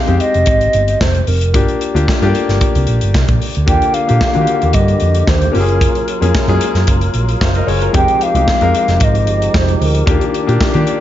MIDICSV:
0, 0, Header, 1, 6, 480
1, 0, Start_track
1, 0, Tempo, 533333
1, 1387, Time_signature, 4, 2, 24, 8
1, 9902, End_track
2, 0, Start_track
2, 0, Title_t, "Alto flute"
2, 0, Program_c, 0, 73
2, 0, Note_on_c, 0, 77, 127
2, 118, Note_off_c, 0, 77, 0
2, 118, Note_on_c, 0, 77, 76
2, 186, Note_on_c, 0, 75, 125
2, 199, Note_off_c, 0, 77, 0
2, 911, Note_on_c, 0, 72, 106
2, 924, Note_off_c, 0, 75, 0
2, 1150, Note_on_c, 0, 70, 88
2, 1164, Note_off_c, 0, 72, 0
2, 1629, Note_off_c, 0, 70, 0
2, 3315, Note_on_c, 0, 79, 109
2, 3546, Note_on_c, 0, 77, 119
2, 3559, Note_off_c, 0, 79, 0
2, 4268, Note_on_c, 0, 75, 102
2, 4281, Note_off_c, 0, 77, 0
2, 4761, Note_on_c, 0, 72, 108
2, 4775, Note_off_c, 0, 75, 0
2, 5001, Note_on_c, 0, 70, 85
2, 5014, Note_off_c, 0, 72, 0
2, 5475, Note_off_c, 0, 70, 0
2, 7152, Note_on_c, 0, 79, 111
2, 7405, Note_on_c, 0, 77, 127
2, 7418, Note_off_c, 0, 79, 0
2, 8132, Note_on_c, 0, 75, 104
2, 8146, Note_off_c, 0, 77, 0
2, 8614, Note_on_c, 0, 72, 103
2, 8627, Note_off_c, 0, 75, 0
2, 8839, Note_off_c, 0, 72, 0
2, 8849, Note_on_c, 0, 70, 83
2, 9283, Note_off_c, 0, 70, 0
2, 9902, End_track
3, 0, Start_track
3, 0, Title_t, "Grand piano"
3, 0, Program_c, 1, 0
3, 0, Control_c, 1, 64, 127
3, 0, Note_on_c, 1, 56, 68
3, 0, Note_on_c, 1, 60, 73
3, 0, Note_on_c, 1, 63, 59
3, 0, Note_on_c, 1, 67, 74
3, 61, Note_off_c, 1, 56, 0
3, 61, Note_on_c, 1, 56, 76
3, 65, Note_off_c, 1, 60, 0
3, 65, Note_on_c, 1, 60, 74
3, 67, Note_off_c, 1, 63, 0
3, 67, Note_on_c, 1, 63, 68
3, 74, Note_off_c, 1, 67, 0
3, 74, Note_on_c, 1, 67, 87
3, 836, Note_off_c, 1, 56, 0
3, 838, Note_off_c, 1, 60, 0
3, 839, Note_off_c, 1, 63, 0
3, 842, Note_off_c, 1, 67, 0
3, 1382, Note_on_c, 1, 58, 67
3, 1385, Note_on_c, 1, 62, 72
3, 1390, Note_on_c, 1, 65, 60
3, 1399, Note_on_c, 1, 67, 87
3, 1400, Control_c, 1, 64, 0
3, 1555, Control_c, 1, 64, 127
3, 1677, Note_off_c, 1, 58, 0
3, 1678, Note_off_c, 1, 62, 0
3, 1681, Note_off_c, 1, 65, 0
3, 1685, Note_off_c, 1, 67, 0
3, 1748, Note_on_c, 1, 58, 72
3, 1754, Note_on_c, 1, 62, 75
3, 1754, Note_on_c, 1, 65, 76
3, 1762, Note_on_c, 1, 67, 90
3, 1942, Note_off_c, 1, 58, 0
3, 1944, Note_off_c, 1, 62, 0
3, 1945, Note_off_c, 1, 65, 0
3, 1949, Note_off_c, 1, 67, 0
3, 1994, Note_on_c, 1, 57, 66
3, 2000, Note_on_c, 1, 62, 87
3, 2005, Note_on_c, 1, 65, 83
3, 2011, Note_on_c, 1, 67, 112
3, 2049, Note_off_c, 1, 57, 0
3, 2051, Note_on_c, 1, 58, 98
3, 2766, Note_off_c, 1, 62, 0
3, 2769, Note_off_c, 1, 65, 0
3, 2772, Note_off_c, 1, 67, 0
3, 2792, Note_off_c, 1, 58, 0
3, 3296, Note_on_c, 1, 58, 74
3, 3301, Note_on_c, 1, 62, 66
3, 3303, Note_on_c, 1, 65, 65
3, 3311, Note_on_c, 1, 67, 79
3, 3323, Control_c, 1, 64, 0
3, 3495, Control_c, 1, 64, 127
3, 3595, Note_off_c, 1, 58, 0
3, 3597, Note_off_c, 1, 62, 0
3, 3599, Note_off_c, 1, 65, 0
3, 3603, Note_off_c, 1, 67, 0
3, 3665, Note_on_c, 1, 62, 61
3, 3668, Note_on_c, 1, 58, 66
3, 3673, Note_on_c, 1, 67, 78
3, 3674, Note_on_c, 1, 65, 69
3, 3861, Note_off_c, 1, 62, 0
3, 3863, Note_off_c, 1, 58, 0
3, 3865, Note_off_c, 1, 67, 0
3, 3866, Note_off_c, 1, 65, 0
3, 3896, Note_on_c, 1, 58, 73
3, 3904, Note_on_c, 1, 50, 76
3, 3908, Note_on_c, 1, 65, 70
3, 3911, Note_on_c, 1, 66, 70
3, 3968, Note_off_c, 1, 66, 0
3, 3972, Note_on_c, 1, 67, 88
3, 4675, Note_off_c, 1, 58, 0
3, 4678, Note_off_c, 1, 50, 0
3, 4680, Note_off_c, 1, 65, 0
3, 4712, Note_off_c, 1, 67, 0
3, 4966, Note_on_c, 1, 58, 80
3, 4975, Note_on_c, 1, 61, 73
3, 4981, Note_on_c, 1, 65, 77
3, 4981, Note_on_c, 1, 67, 67
3, 5002, Control_c, 1, 64, 0
3, 5043, Note_on_c, 1, 68, 92
3, 5046, Note_off_c, 1, 67, 0
3, 5158, Control_c, 1, 64, 127
3, 5460, Note_off_c, 1, 58, 0
3, 5464, Note_off_c, 1, 61, 0
3, 5467, Note_off_c, 1, 65, 0
3, 5498, Note_off_c, 1, 68, 0
3, 5589, Note_on_c, 1, 58, 72
3, 5591, Note_on_c, 1, 61, 78
3, 5599, Note_on_c, 1, 68, 90
3, 5601, Note_on_c, 1, 65, 74
3, 5783, Note_off_c, 1, 58, 0
3, 5784, Note_off_c, 1, 61, 0
3, 5788, Note_off_c, 1, 65, 0
3, 5788, Note_off_c, 1, 68, 0
3, 5828, Note_on_c, 1, 56, 76
3, 5837, Note_on_c, 1, 61, 78
3, 5839, Note_on_c, 1, 65, 79
3, 5844, Note_on_c, 1, 68, 107
3, 5887, Note_off_c, 1, 56, 0
3, 5892, Note_on_c, 1, 58, 87
3, 6430, Note_off_c, 1, 65, 0
3, 6433, Note_off_c, 1, 68, 0
3, 6603, Note_off_c, 1, 61, 0
3, 6631, Note_off_c, 1, 58, 0
3, 6672, Note_on_c, 1, 77, 70
3, 6676, Note_on_c, 1, 72, 63
3, 6791, Note_off_c, 1, 77, 0
3, 6793, Note_off_c, 1, 72, 0
3, 6807, Note_on_c, 1, 75, 78
3, 6812, Note_on_c, 1, 70, 66
3, 6904, Note_on_c, 1, 73, 72
3, 6909, Note_off_c, 1, 75, 0
3, 6911, Note_off_c, 1, 70, 0
3, 6912, Note_on_c, 1, 68, 63
3, 7027, Note_off_c, 1, 73, 0
3, 7031, Note_off_c, 1, 68, 0
3, 7039, Note_on_c, 1, 70, 72
3, 7040, Note_on_c, 1, 65, 57
3, 7136, Note_on_c, 1, 56, 83
3, 7142, Note_on_c, 1, 60, 65
3, 7144, Note_on_c, 1, 63, 73
3, 7148, Note_on_c, 1, 67, 73
3, 7160, Control_c, 1, 64, 0
3, 7265, Note_off_c, 1, 70, 0
3, 7266, Note_off_c, 1, 65, 0
3, 7295, Control_c, 1, 64, 127
3, 7433, Note_off_c, 1, 56, 0
3, 7436, Note_off_c, 1, 60, 0
3, 7437, Note_off_c, 1, 63, 0
3, 7439, Note_off_c, 1, 67, 0
3, 7513, Note_on_c, 1, 56, 69
3, 7513, Note_on_c, 1, 60, 67
3, 7518, Note_on_c, 1, 63, 67
3, 7528, Note_on_c, 1, 67, 82
3, 7703, Note_off_c, 1, 56, 0
3, 7703, Note_off_c, 1, 60, 0
3, 7706, Note_off_c, 1, 63, 0
3, 7710, Note_off_c, 1, 67, 0
3, 7748, Note_on_c, 1, 56, 83
3, 7750, Note_on_c, 1, 60, 72
3, 7755, Note_on_c, 1, 63, 74
3, 7758, Note_on_c, 1, 70, 91
3, 8517, Note_off_c, 1, 56, 0
3, 8518, Note_off_c, 1, 60, 0
3, 8521, Note_off_c, 1, 63, 0
3, 8522, Note_off_c, 1, 70, 0
3, 9054, Note_on_c, 1, 58, 83
3, 9059, Note_on_c, 1, 62, 70
3, 9066, Note_on_c, 1, 65, 68
3, 9071, Note_on_c, 1, 67, 83
3, 9075, Control_c, 1, 64, 0
3, 9244, Control_c, 1, 64, 127
3, 9350, Note_off_c, 1, 58, 0
3, 9353, Note_off_c, 1, 62, 0
3, 9356, Note_off_c, 1, 65, 0
3, 9359, Note_off_c, 1, 67, 0
3, 9419, Note_on_c, 1, 58, 80
3, 9426, Note_on_c, 1, 65, 74
3, 9427, Note_on_c, 1, 62, 80
3, 9436, Note_on_c, 1, 67, 91
3, 9614, Note_off_c, 1, 58, 0
3, 9618, Note_off_c, 1, 62, 0
3, 9618, Note_off_c, 1, 65, 0
3, 9623, Note_off_c, 1, 67, 0
3, 9661, Note_on_c, 1, 58, 90
3, 9668, Note_on_c, 1, 62, 87
3, 9670, Note_on_c, 1, 65, 81
3, 9674, Note_on_c, 1, 67, 102
3, 9902, Note_off_c, 1, 58, 0
3, 9902, Note_off_c, 1, 62, 0
3, 9902, Note_off_c, 1, 65, 0
3, 9902, Note_off_c, 1, 67, 0
3, 9902, End_track
4, 0, Start_track
4, 0, Title_t, "Tonewheel organ"
4, 0, Program_c, 2, 16
4, 3321, Note_on_c, 2, 58, 67
4, 3326, Note_on_c, 2, 67, 76
4, 3328, Note_on_c, 2, 50, 74
4, 4979, Note_off_c, 2, 58, 0
4, 4982, Note_off_c, 2, 67, 0
4, 4983, Note_off_c, 2, 50, 0
4, 4986, Note_on_c, 2, 70, 71
4, 4991, Note_on_c, 2, 65, 62
4, 4992, Note_on_c, 2, 54, 75
4, 7124, Note_off_c, 2, 70, 0
4, 7126, Note_off_c, 2, 65, 0
4, 7127, Note_off_c, 2, 54, 0
4, 7136, Note_on_c, 2, 53, 80
4, 7139, Note_on_c, 2, 63, 59
4, 7148, Note_on_c, 2, 56, 82
4, 7149, Note_on_c, 2, 67, 64
4, 9039, Note_off_c, 2, 53, 0
4, 9040, Note_off_c, 2, 63, 0
4, 9045, Note_off_c, 2, 56, 0
4, 9058, Note_on_c, 2, 51, 70
4, 9059, Note_on_c, 2, 62, 65
4, 9902, Note_off_c, 2, 51, 0
4, 9902, Note_off_c, 2, 62, 0
4, 9902, Note_off_c, 2, 67, 0
4, 9902, End_track
5, 0, Start_track
5, 0, Title_t, "Picked electric bass"
5, 0, Program_c, 3, 34
5, 77, Note_on_c, 3, 41, 101
5, 157, Note_off_c, 3, 41, 0
5, 318, Note_on_c, 3, 29, 95
5, 398, Note_off_c, 3, 29, 0
5, 421, Note_on_c, 3, 32, 113
5, 599, Note_off_c, 3, 32, 0
5, 671, Note_on_c, 3, 31, 93
5, 845, Note_off_c, 3, 31, 0
5, 907, Note_on_c, 3, 29, 92
5, 1083, Note_off_c, 3, 29, 0
5, 1149, Note_on_c, 3, 29, 106
5, 1391, Note_off_c, 3, 29, 0
5, 1391, Note_on_c, 3, 31, 98
5, 1483, Note_off_c, 3, 31, 0
5, 1754, Note_on_c, 3, 38, 88
5, 1837, Note_off_c, 3, 38, 0
5, 2000, Note_on_c, 3, 43, 98
5, 2081, Note_off_c, 3, 43, 0
5, 2242, Note_on_c, 3, 31, 101
5, 2323, Note_off_c, 3, 31, 0
5, 2482, Note_on_c, 3, 36, 100
5, 2563, Note_off_c, 3, 36, 0
5, 2597, Note_on_c, 3, 34, 82
5, 2687, Note_off_c, 3, 34, 0
5, 2729, Note_on_c, 3, 31, 96
5, 2807, Note_off_c, 3, 31, 0
5, 2831, Note_on_c, 3, 36, 89
5, 2924, Note_off_c, 3, 36, 0
5, 2958, Note_on_c, 3, 34, 88
5, 3040, Note_off_c, 3, 34, 0
5, 3212, Note_on_c, 3, 38, 80
5, 3289, Note_off_c, 3, 38, 0
5, 3310, Note_on_c, 3, 39, 112
5, 3403, Note_off_c, 3, 39, 0
5, 3695, Note_on_c, 3, 46, 94
5, 3771, Note_off_c, 3, 46, 0
5, 3926, Note_on_c, 3, 51, 104
5, 4006, Note_off_c, 3, 51, 0
5, 4168, Note_on_c, 3, 39, 95
5, 4247, Note_off_c, 3, 39, 0
5, 4268, Note_on_c, 3, 43, 104
5, 4445, Note_off_c, 3, 43, 0
5, 4519, Note_on_c, 3, 41, 91
5, 4692, Note_off_c, 3, 41, 0
5, 4750, Note_on_c, 3, 39, 97
5, 4926, Note_off_c, 3, 39, 0
5, 5001, Note_on_c, 3, 30, 118
5, 5266, Note_off_c, 3, 30, 0
5, 5598, Note_on_c, 3, 41, 88
5, 5680, Note_off_c, 3, 41, 0
5, 5832, Note_on_c, 3, 42, 105
5, 5916, Note_off_c, 3, 42, 0
5, 6073, Note_on_c, 3, 42, 87
5, 6157, Note_off_c, 3, 42, 0
5, 6190, Note_on_c, 3, 30, 107
5, 6365, Note_off_c, 3, 30, 0
5, 6430, Note_on_c, 3, 34, 80
5, 6605, Note_off_c, 3, 34, 0
5, 6669, Note_on_c, 3, 30, 102
5, 6845, Note_off_c, 3, 30, 0
5, 6908, Note_on_c, 3, 30, 115
5, 7084, Note_off_c, 3, 30, 0
5, 7152, Note_on_c, 3, 29, 112
5, 7243, Note_off_c, 3, 29, 0
5, 7512, Note_on_c, 3, 36, 90
5, 7596, Note_off_c, 3, 36, 0
5, 7758, Note_on_c, 3, 41, 96
5, 7839, Note_off_c, 3, 41, 0
5, 7997, Note_on_c, 3, 29, 93
5, 8078, Note_off_c, 3, 29, 0
5, 8108, Note_on_c, 3, 32, 100
5, 8351, Note_off_c, 3, 32, 0
5, 8351, Note_on_c, 3, 31, 92
5, 8524, Note_off_c, 3, 31, 0
5, 8592, Note_on_c, 3, 29, 89
5, 8765, Note_off_c, 3, 29, 0
5, 8833, Note_on_c, 3, 38, 93
5, 9005, Note_off_c, 3, 38, 0
5, 9066, Note_on_c, 3, 39, 104
5, 9158, Note_off_c, 3, 39, 0
5, 9438, Note_on_c, 3, 46, 93
5, 9518, Note_off_c, 3, 46, 0
5, 9674, Note_on_c, 3, 51, 108
5, 9755, Note_off_c, 3, 51, 0
5, 9902, End_track
6, 0, Start_track
6, 0, Title_t, "Drums"
6, 66, Note_on_c, 9, 42, 46
6, 156, Note_off_c, 9, 42, 0
6, 180, Note_on_c, 9, 42, 70
6, 270, Note_off_c, 9, 42, 0
6, 309, Note_on_c, 9, 42, 45
6, 399, Note_off_c, 9, 42, 0
6, 413, Note_on_c, 9, 42, 83
6, 424, Note_on_c, 9, 36, 112
6, 503, Note_off_c, 9, 42, 0
6, 514, Note_off_c, 9, 36, 0
6, 548, Note_on_c, 9, 42, 49
6, 638, Note_off_c, 9, 42, 0
6, 659, Note_on_c, 9, 42, 66
6, 749, Note_off_c, 9, 42, 0
6, 791, Note_on_c, 9, 42, 56
6, 881, Note_off_c, 9, 42, 0
6, 908, Note_on_c, 9, 36, 110
6, 908, Note_on_c, 9, 38, 113
6, 998, Note_off_c, 9, 36, 0
6, 998, Note_off_c, 9, 38, 0
6, 1032, Note_on_c, 9, 42, 51
6, 1122, Note_off_c, 9, 42, 0
6, 1144, Note_on_c, 9, 46, 65
6, 1234, Note_off_c, 9, 46, 0
6, 1270, Note_on_c, 9, 42, 52
6, 1360, Note_off_c, 9, 42, 0
6, 1387, Note_on_c, 9, 42, 88
6, 1389, Note_on_c, 9, 36, 122
6, 1477, Note_off_c, 9, 42, 0
6, 1479, Note_off_c, 9, 36, 0
6, 1516, Note_on_c, 9, 42, 43
6, 1606, Note_off_c, 9, 42, 0
6, 1629, Note_on_c, 9, 42, 68
6, 1719, Note_off_c, 9, 42, 0
6, 1766, Note_on_c, 9, 42, 54
6, 1856, Note_off_c, 9, 42, 0
6, 1873, Note_on_c, 9, 36, 127
6, 1880, Note_on_c, 9, 38, 111
6, 1963, Note_off_c, 9, 36, 0
6, 1970, Note_off_c, 9, 38, 0
6, 2003, Note_on_c, 9, 42, 44
6, 2093, Note_off_c, 9, 42, 0
6, 2113, Note_on_c, 9, 42, 73
6, 2203, Note_off_c, 9, 42, 0
6, 2242, Note_on_c, 9, 38, 41
6, 2243, Note_on_c, 9, 42, 41
6, 2332, Note_off_c, 9, 38, 0
6, 2333, Note_off_c, 9, 42, 0
6, 2348, Note_on_c, 9, 42, 82
6, 2351, Note_on_c, 9, 36, 104
6, 2438, Note_off_c, 9, 42, 0
6, 2441, Note_off_c, 9, 36, 0
6, 2477, Note_on_c, 9, 42, 55
6, 2567, Note_off_c, 9, 42, 0
6, 2581, Note_on_c, 9, 42, 64
6, 2671, Note_off_c, 9, 42, 0
6, 2710, Note_on_c, 9, 42, 60
6, 2800, Note_off_c, 9, 42, 0
6, 2830, Note_on_c, 9, 36, 116
6, 2833, Note_on_c, 9, 38, 111
6, 2920, Note_off_c, 9, 36, 0
6, 2923, Note_off_c, 9, 38, 0
6, 2953, Note_on_c, 9, 42, 51
6, 2958, Note_on_c, 9, 36, 104
6, 3043, Note_off_c, 9, 42, 0
6, 3048, Note_off_c, 9, 36, 0
6, 3074, Note_on_c, 9, 46, 65
6, 3164, Note_off_c, 9, 46, 0
6, 3193, Note_on_c, 9, 42, 55
6, 3283, Note_off_c, 9, 42, 0
6, 3309, Note_on_c, 9, 36, 113
6, 3309, Note_on_c, 9, 42, 89
6, 3399, Note_off_c, 9, 36, 0
6, 3399, Note_off_c, 9, 42, 0
6, 3437, Note_on_c, 9, 42, 52
6, 3527, Note_off_c, 9, 42, 0
6, 3545, Note_on_c, 9, 42, 75
6, 3635, Note_off_c, 9, 42, 0
6, 3679, Note_on_c, 9, 42, 50
6, 3769, Note_off_c, 9, 42, 0
6, 3787, Note_on_c, 9, 38, 120
6, 3788, Note_on_c, 9, 36, 127
6, 3877, Note_off_c, 9, 38, 0
6, 3878, Note_off_c, 9, 36, 0
6, 3904, Note_on_c, 9, 42, 44
6, 3994, Note_off_c, 9, 42, 0
6, 4024, Note_on_c, 9, 42, 69
6, 4114, Note_off_c, 9, 42, 0
6, 4155, Note_on_c, 9, 42, 45
6, 4245, Note_off_c, 9, 42, 0
6, 4259, Note_on_c, 9, 42, 94
6, 4269, Note_on_c, 9, 36, 108
6, 4349, Note_off_c, 9, 42, 0
6, 4359, Note_off_c, 9, 36, 0
6, 4393, Note_on_c, 9, 42, 49
6, 4483, Note_off_c, 9, 42, 0
6, 4497, Note_on_c, 9, 42, 62
6, 4587, Note_off_c, 9, 42, 0
6, 4630, Note_on_c, 9, 42, 57
6, 4720, Note_off_c, 9, 42, 0
6, 4747, Note_on_c, 9, 38, 115
6, 4748, Note_on_c, 9, 36, 127
6, 4837, Note_off_c, 9, 38, 0
6, 4838, Note_off_c, 9, 36, 0
6, 4874, Note_on_c, 9, 42, 49
6, 4964, Note_off_c, 9, 42, 0
6, 4992, Note_on_c, 9, 46, 64
6, 5082, Note_off_c, 9, 46, 0
6, 5117, Note_on_c, 9, 42, 46
6, 5207, Note_off_c, 9, 42, 0
6, 5231, Note_on_c, 9, 36, 109
6, 5236, Note_on_c, 9, 42, 92
6, 5321, Note_off_c, 9, 36, 0
6, 5326, Note_off_c, 9, 42, 0
6, 5357, Note_on_c, 9, 42, 46
6, 5447, Note_off_c, 9, 42, 0
6, 5470, Note_on_c, 9, 42, 78
6, 5560, Note_off_c, 9, 42, 0
6, 5601, Note_on_c, 9, 42, 58
6, 5691, Note_off_c, 9, 42, 0
6, 5711, Note_on_c, 9, 36, 127
6, 5715, Note_on_c, 9, 38, 127
6, 5801, Note_off_c, 9, 36, 0
6, 5805, Note_off_c, 9, 38, 0
6, 5835, Note_on_c, 9, 42, 47
6, 5925, Note_off_c, 9, 42, 0
6, 5947, Note_on_c, 9, 42, 80
6, 6037, Note_off_c, 9, 42, 0
6, 6075, Note_on_c, 9, 38, 38
6, 6077, Note_on_c, 9, 42, 44
6, 6165, Note_off_c, 9, 38, 0
6, 6167, Note_off_c, 9, 42, 0
6, 6184, Note_on_c, 9, 42, 85
6, 6191, Note_on_c, 9, 36, 100
6, 6274, Note_off_c, 9, 42, 0
6, 6281, Note_off_c, 9, 36, 0
6, 6312, Note_on_c, 9, 42, 49
6, 6402, Note_off_c, 9, 42, 0
6, 6423, Note_on_c, 9, 42, 66
6, 6513, Note_off_c, 9, 42, 0
6, 6557, Note_on_c, 9, 42, 52
6, 6647, Note_off_c, 9, 42, 0
6, 6671, Note_on_c, 9, 36, 122
6, 6672, Note_on_c, 9, 38, 120
6, 6761, Note_off_c, 9, 36, 0
6, 6762, Note_off_c, 9, 38, 0
6, 6794, Note_on_c, 9, 42, 53
6, 6884, Note_off_c, 9, 42, 0
6, 6914, Note_on_c, 9, 46, 72
6, 7004, Note_off_c, 9, 46, 0
6, 7034, Note_on_c, 9, 42, 54
6, 7124, Note_off_c, 9, 42, 0
6, 7147, Note_on_c, 9, 42, 89
6, 7150, Note_on_c, 9, 36, 121
6, 7237, Note_off_c, 9, 42, 0
6, 7240, Note_off_c, 9, 36, 0
6, 7273, Note_on_c, 9, 42, 47
6, 7363, Note_off_c, 9, 42, 0
6, 7388, Note_on_c, 9, 42, 74
6, 7478, Note_off_c, 9, 42, 0
6, 7516, Note_on_c, 9, 42, 60
6, 7606, Note_off_c, 9, 42, 0
6, 7628, Note_on_c, 9, 38, 117
6, 7630, Note_on_c, 9, 36, 127
6, 7718, Note_off_c, 9, 38, 0
6, 7720, Note_off_c, 9, 36, 0
6, 7748, Note_on_c, 9, 42, 50
6, 7838, Note_off_c, 9, 42, 0
6, 7871, Note_on_c, 9, 42, 77
6, 7961, Note_off_c, 9, 42, 0
6, 7992, Note_on_c, 9, 38, 36
6, 7994, Note_on_c, 9, 42, 44
6, 8082, Note_off_c, 9, 38, 0
6, 8084, Note_off_c, 9, 42, 0
6, 8101, Note_on_c, 9, 42, 90
6, 8108, Note_on_c, 9, 36, 112
6, 8191, Note_off_c, 9, 42, 0
6, 8198, Note_off_c, 9, 36, 0
6, 8234, Note_on_c, 9, 42, 53
6, 8324, Note_off_c, 9, 42, 0
6, 8343, Note_on_c, 9, 42, 61
6, 8433, Note_off_c, 9, 42, 0
6, 8478, Note_on_c, 9, 42, 61
6, 8568, Note_off_c, 9, 42, 0
6, 8589, Note_on_c, 9, 36, 121
6, 8593, Note_on_c, 9, 38, 108
6, 8679, Note_off_c, 9, 36, 0
6, 8683, Note_off_c, 9, 38, 0
6, 8715, Note_on_c, 9, 42, 49
6, 8805, Note_off_c, 9, 42, 0
6, 8834, Note_on_c, 9, 46, 66
6, 8924, Note_off_c, 9, 46, 0
6, 8952, Note_on_c, 9, 42, 53
6, 9042, Note_off_c, 9, 42, 0
6, 9065, Note_on_c, 9, 36, 118
6, 9068, Note_on_c, 9, 42, 97
6, 9155, Note_off_c, 9, 36, 0
6, 9158, Note_off_c, 9, 42, 0
6, 9191, Note_on_c, 9, 42, 50
6, 9281, Note_off_c, 9, 42, 0
6, 9309, Note_on_c, 9, 42, 73
6, 9399, Note_off_c, 9, 42, 0
6, 9439, Note_on_c, 9, 42, 58
6, 9529, Note_off_c, 9, 42, 0
6, 9545, Note_on_c, 9, 36, 127
6, 9549, Note_on_c, 9, 38, 113
6, 9635, Note_off_c, 9, 36, 0
6, 9639, Note_off_c, 9, 38, 0
6, 9664, Note_on_c, 9, 42, 46
6, 9754, Note_off_c, 9, 42, 0
6, 9782, Note_on_c, 9, 42, 66
6, 9872, Note_off_c, 9, 42, 0
6, 9902, End_track
0, 0, End_of_file